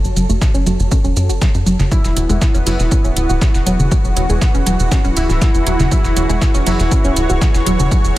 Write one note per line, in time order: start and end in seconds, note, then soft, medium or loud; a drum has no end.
0.00 2.90 F#4 medium
0.00 1.92 A4 medium
0.00 2.75 C#5 medium
0.00 1.92 A5 medium
0.04 0.14 F#1 medium
0.04 shaker soft
0.16 0.27 F#1 medium
0.16 0.25 F#3 loud
0.16 closed hi-hat medium
0.16 shaker medium
0.29 0.39 F#1 medium
0.29 0.41 A3 medium
0.29 shaker soft
0.41 kick loud
0.41 snare loud
0.41 closed hi-hat medium
0.41 shaker medium
0.54 0.64 F#1 medium
0.54 0.66 C#4 loud
0.54 shaker soft
0.66 0.77 F#1 loud
0.66 0.79 F#3 loud
0.66 closed hi-hat medium
0.66 shaker medium
0.80 0.89 F#1 medium
0.80 shaker soft
0.91 1.00 C#4 medium
0.91 kick loud
0.91 closed hi-hat medium
0.91 shaker medium
1.04 1.14 E1 medium
1.04 1.16 C#4 loud
1.04 shaker soft
1.17 1.31 F#2 loud
1.17 closed hi-hat medium
1.17 shaker medium
1.29 1.39 F#1 medium
1.29 1.38 F#4 medium
1.29 closed hi-hat soft
1.29 shaker soft
1.41 1.47 F#3 medium
1.41 kick loud
1.41 snare loud
1.41 closed hi-hat medium
1.41 shaker medium
1.54 1.64 F#2 medium
1.54 closed hi-hat soft
1.54 shaker soft
1.66 1.77 F#1 medium
1.66 1.79 F#3 loud
1.66 closed hi-hat medium
1.66 shaker medium
1.79 1.89 F#1 medium
1.79 1.91 C#3 medium
1.79 snare medium
1.79 shaker soft
1.91 8.18 E3 medium
1.91 2.00 F#3 medium
1.91 5.88 B3 medium
1.91 2.57 E4 loud
1.91 8.18 E4 medium
1.91 8.18 F#4 medium
1.91 kick loud
1.91 closed hi-hat medium
1.91 shaker medium
2.04 2.14 E1 medium
2.04 8.18 G#4 medium
2.04 snare soft
2.04 shaker soft
2.16 2.27 E1 medium
2.16 2.25 F#3 loud
2.16 closed hi-hat medium
2.16 shaker medium
2.28 2.39 E1 medium
2.28 2.41 G#3 loud
2.28 8.18 B4 medium
2.28 closed hi-hat soft
2.28 shaker soft
2.41 kick loud
2.41 snare loud
2.41 closed hi-hat medium
2.41 shaker medium
2.54 2.64 E1 medium
2.54 2.66 C#4 loud
2.54 closed hi-hat soft
2.54 shaker soft
2.66 2.77 F#1 loud
2.66 2.79 F#3 loud
2.66 3.57 E4 loud
2.66 closed hi-hat medium
2.66 open hi-hat medium
2.66 shaker medium
2.79 2.89 E1 medium
2.79 snare soft
2.79 shaker soft
2.91 3.00 C#4 medium
2.91 kick loud
2.91 closed hi-hat medium
2.91 shaker medium
3.04 3.14 D1 medium
3.04 3.16 C#4 loud
3.04 shaker soft
3.16 3.27 D1 loud
3.16 8.18 G#5 medium
3.16 closed hi-hat medium
3.16 closed hi-hat loud
3.16 shaker medium
3.29 3.39 D1 medium
3.29 3.38 F#4 medium
3.29 shaker soft
3.41 3.47 F#3 medium
3.41 kick loud
3.41 snare loud
3.41 closed hi-hat medium
3.41 shaker medium
3.54 3.64 E1 medium
3.54 snare soft
3.54 shaker soft
3.66 3.77 E1 medium
3.66 3.79 F#3 loud
3.66 closed hi-hat medium
3.66 closed hi-hat loud
3.66 shaker medium
3.79 3.89 E1 medium
3.79 3.91 C#3 medium
3.79 shaker soft
3.91 4.00 F#3 medium
3.91 kick loud
3.91 closed hi-hat medium
3.91 shaker medium
4.04 4.14 E1 medium
4.04 shaker soft
4.16 4.27 E1 medium
4.16 4.26 F#3 loud
4.16 closed hi-hat medium
4.16 shaker medium
4.29 4.39 E1 medium
4.29 4.41 G#3 medium
4.29 shaker soft
4.41 kick loud
4.41 snare loud
4.41 closed hi-hat medium
4.41 shaker medium
4.54 4.64 E1 medium
4.54 4.66 C#4 loud
4.54 shaker soft
4.66 4.77 E1 loud
4.66 4.79 F#3 loud
4.66 closed hi-hat medium
4.66 shaker medium
4.80 4.89 E1 medium
4.80 shaker soft
4.91 5.01 C#4 medium
4.91 kick loud
4.91 snare loud
4.91 closed hi-hat medium
4.91 shaker medium
5.04 5.14 D1 medium
5.04 5.16 C#4 loud
5.04 closed hi-hat soft
5.04 shaker soft
5.16 5.27 D1 loud
5.16 5.82 E4 medium
5.16 closed hi-hat medium
5.16 open hi-hat medium
5.16 shaker medium
5.29 5.39 D1 medium
5.29 5.38 F#4 medium
5.29 snare soft
5.29 shaker soft
5.41 5.47 F#3 medium
5.41 kick loud
5.41 snare loud
5.41 closed hi-hat medium
5.41 shaker medium
5.54 5.64 E1 medium
5.54 closed hi-hat soft
5.54 shaker soft
5.66 5.77 E1 loud
5.66 5.79 F#3 loud
5.66 closed hi-hat medium
5.66 shaker medium
5.79 5.89 E1 medium
5.79 5.91 C#3 medium
5.79 snare medium
5.79 shaker soft
5.91 6.01 F#3 medium
5.91 6.57 E4 loud
5.91 8.18 C#5 medium
5.91 kick loud
5.91 closed hi-hat medium
5.91 shaker medium
6.04 6.14 E1 medium
6.04 snare soft
6.04 shaker soft
6.17 6.27 E1 loud
6.17 6.26 F#3 loud
6.17 closed hi-hat medium
6.17 shaker medium
6.29 6.39 E1 medium
6.29 6.41 G#3 loud
6.29 closed hi-hat soft
6.29 shaker soft
6.41 kick loud
6.41 snare loud
6.41 closed hi-hat medium
6.41 shaker medium
6.54 6.64 E1 medium
6.54 6.66 C#4 loud
6.54 closed hi-hat soft
6.54 shaker soft
6.66 6.77 F#1 loud
6.66 6.79 F#3 loud
6.66 7.57 E4 loud
6.66 closed hi-hat medium
6.66 open hi-hat medium
6.66 shaker medium
6.79 6.89 E1 medium
6.79 snare soft
6.79 shaker soft
6.91 7.01 C#4 medium
6.91 kick loud
6.91 closed hi-hat medium
6.91 shaker medium
7.05 7.14 D1 medium
7.05 7.16 C#4 loud
7.05 shaker soft
7.16 7.27 D1 loud
7.16 closed hi-hat medium
7.16 shaker medium
7.30 7.39 D1 medium
7.30 7.38 F#4 medium
7.30 shaker soft
7.41 7.47 F#3 medium
7.41 kick loud
7.41 snare loud
7.41 closed hi-hat medium
7.41 shaker medium
7.54 7.64 E1 medium
7.54 snare medium
7.54 shaker soft
7.66 7.77 E1 medium
7.66 7.79 F#3 loud
7.66 closed hi-hat medium
7.66 shaker medium
7.80 7.89 E1 medium
7.80 7.91 C#3 medium
7.80 shaker soft
7.91 8.00 F#3 medium
7.91 kick loud
7.91 closed hi-hat medium
7.91 shaker medium
8.05 8.14 E1 medium
8.05 shaker soft